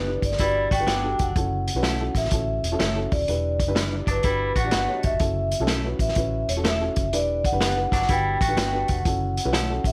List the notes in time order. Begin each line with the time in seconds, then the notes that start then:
Already playing: F#1 G4 B4
0.07 D4 E4 G4 D5
0.22 G1 D5, kick, closed hi-hat
0.32 snare
0.38 G1 G3 D4 E4 F#4 G4 B4 D5, kick, closed hi-hat
0.71 A1 A3 F#4 G5, kick, closed hi-hat
0.78 G1 D4 F#4 G4 B4
0.87 G1 F#3 B3 D4 F#4 B4, snare, closed hi-hat
1.04 D4 F#4 G4 A4
1.19 F1 F#5, kick, closed hi-hat
1.36 F#1 C#4 E4 F#4 A4, kick, closed hi-hat
1.68 closed hi-hat
1.75 B1 C#4 E4 F#4 B4
1.83 A3 C#4 E4 A4, snare, closed hi-hat
2.00 C#4 E4 F#4 A4
2.15 A1 E5, kick, snare, closed hi-hat
2.25 snare
2.31 A1 C#4 E4 F#4 A4, kick, closed hi-hat
2.63 E1, closed hi-hat
2.72 C#4 E4 F#4 A4
2.79 F#1 A3 C#4 E4 A4, snare, closed hi-hat
2.95 C#4 E4 F#4 A4
3.12 D#1 D5, kick, open hi-hat
3.28 E1 D4 E4 G4 B4, closed hi-hat
3.60 kick, closed hi-hat
3.67 F#1 D4 E4 G4 B4
3.75 G3 D4 E4 B4, snare, closed hi-hat
3.92 D4 E4 G4 D5
4.07 G1 F#3 D4 B4, kick, closed hi-hat
4.23 G1 G3 D4 E4 F#4 G4 B4, kick, closed hi-hat
4.55 A1 A3 F#4 F#5, kick, closed hi-hat
4.64 D4 F#4 G4 D5
4.71 G1 B3 D4 F#4 B4, snare, closed hi-hat
4.88 D4 F#4 G4 C#5
4.96 D#5
5.03 G1 E5, kick, closed hi-hat
5.12 F#1
5.20 F#1 C#4 E4 F#4 A4, kick, closed hi-hat
5.52 closed hi-hat
5.60 B1 C#4 E4 F#4 A4
5.67 A3 C#4 E4 A4, snare, closed hi-hat
5.85 C#4 E4 F#4 B4
5.99 A1 E5, kick, closed hi-hat
6.08 snare
6.15 A1 C#4 E4 F#4 B4, kick, closed hi-hat
6.48 E1 C#5, closed hi-hat
6.56 C#4 E4 F#4 A4
6.64 A3 C#4 E4 A4 E5, snare, closed hi-hat
6.80 C#4 E4 F#4 A4
6.96 F#1, kick, closed hi-hat
7.13 E1 D4 E4 G4 B4 D5, closed hi-hat
7.45 F#5, kick, closed hi-hat
7.52 F#1 D4 E4 G4 B4
7.61 B3 D4 G4 B4, snare, closed hi-hat
7.76 D4 E4 G4 B4
7.92 G1 F#3 D4 F#5, kick, snare, closed hi-hat
8.02 snare
8.08 G1 G3 D4 E4 F#4 G4 B4 G5, kick, closed hi-hat
8.41 A1 A3 F#4 G5, kick, closed hi-hat
8.48 D4 F#4 G4 B4
8.56 G1 B3 D4 F#4 B4, snare, closed hi-hat
8.72 D4 F#4 G4 B4
8.88 F1 F#5, kick, closed hi-hat
9.05 F#1 C#4 E4 F#4 A4, kick, closed hi-hat
9.37 closed hi-hat
9.45 B1 C#4 E4 F#4 B4
9.53 A3 C#4 E4 A4, snare, closed hi-hat
9.69 C#4 E4 F#4 A4
9.84 A1 E5, kick, closed hi-hat